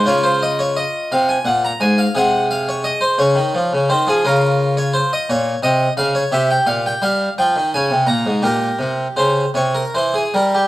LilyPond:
<<
  \new Staff \with { instrumentName = "Harpsichord" } { \time 6/8 \key des \major \tempo 4. = 57 << { des''16 c''16 ees''16 des''16 ees''8 f''16 aes''16 ges''16 bes''16 aes''16 f''16 | ges''8 f''16 des''16 ees''16 c''16 des''4 c''16 aes'16 | \key c \phrygian bes'8. des''16 c''16 ees''16 des''8 ees''8 f''16 des''16 | e''16 g''16 f''16 g''16 f''8 g''8 aes''8 bes''8 |
bes'4 c''8 des''16 bes'16 c''16 aes'16 bes'16 g'16 | } \\ { f'2. | aes'4. r4. | f'4. r4. | g'4. r4. |
g'4. r4. | } >> }
  \new Staff \with { instrumentName = "Harpsichord" } { \clef bass \time 6/8 \key des \major des4. c8 bes,8 aes,8 | c4. des16 ees16 f16 des16 ees16 f16 | \key c \phrygian des4. bes,8 c8 des8 | c8 bes,8 g8 f16 ees16 des16 c16 bes,16 aes,16 |
bes,8 c8 des8 c8 e8 g8 | }
>>